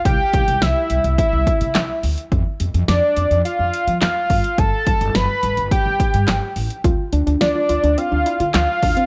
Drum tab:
HH |x-xxx-xxx-xxx-ox|x-xxx-xxx-xxx-ox|x-xxx-xxx-xxx-ox|x-xxx-xxx-xxx-ox|
CP |------------x---|------------x---|------------x---|------------x---|
SD |----o-------o---|----o-------o---|----o-------o---|----o-------o---|
BD |o-o-----o-o-----|o-------------o-|o-o-----o-o-----|o-------------o-|